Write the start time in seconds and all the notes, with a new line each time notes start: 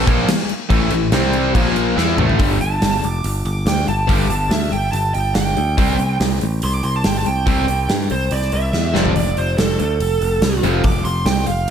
0.06 A#1 A#2 F3 A#3, kick, crash
0.28 snare, crash
0.49 crash
0.70 A1 A2 E3 A3, kick, crash
0.90 A1 A2 E3, crash
1.12 C2 C3 G3 C4, snare, crash
1.33 crash
1.55 A#1 A#2 F3 A#3, kick, crash
1.76 crash
1.97 E2 E3 B3 E4, snare
2.18 A1 A2 E3 A3, mid tom
2.29 floor tom
2.39 G1 G2 D3 G3, kick, open hi-hat
2.60 G1 A5, open hi-hat
2.82 G1, snare, open hi-hat
3.03 F1 D6, open hi-hat
3.24 G1, open hi-hat
3.45 G1 D6, open hi-hat
3.66 D2 G5, snare, open hi-hat
3.87 G1 A5, open hi-hat
4.08 G1 G2 D3 G3 D6, kick, open hi-hat
4.29 G1 A5, open hi-hat
4.50 D2 E5, snare, open hi-hat
4.72 G1 G5, open hi-hat
4.92 G1 A5, open hi-hat
5.14 G1 G5, open hi-hat
5.35 G1 G5, snare, open hi-hat
5.57 D2, open hi-hat
5.78 C2 C3 G3 C4, kick, open hi-hat
5.98 C2, open hi-hat
6.20 C2, snare, open hi-hat
6.41 A1, open hi-hat
6.62 C2 C6, open hi-hat
6.74 D6
6.83 C2 C6, open hi-hat
6.96 A5
7.04 G1 G5, snare, open hi-hat
7.17 A5
7.26 C2 G5, open hi-hat
7.47 C2 C3 G3 C4 G5, kick, open hi-hat
7.68 C2, open hi-hat
7.89 G2, snare, open hi-hat
8.10 C2 C5, open hi-hat
8.31 C2 D5, open hi-hat
8.42 snare
8.52 C2 E5, open hi-hat
8.73 E2, snare
8.94 F1 F2 C3 F3 D5, snare
9.06 floor tom
9.16 F1 D5, open hi-hat
9.37 F1 C5, open hi-hat
9.58 F1 A4, snare, open hi-hat
9.80 D2 A4, open hi-hat
10.00 F1, open hi-hat
10.21 F1, open hi-hat
10.42 C2, snare, open hi-hat
10.63 F1 F2 C3 F3, open hi-hat
10.84 F1 D6, kick, open hi-hat
11.05 F1 C6, open hi-hat
11.26 C2 G5, snare, open hi-hat
11.47 F1 F5, open hi-hat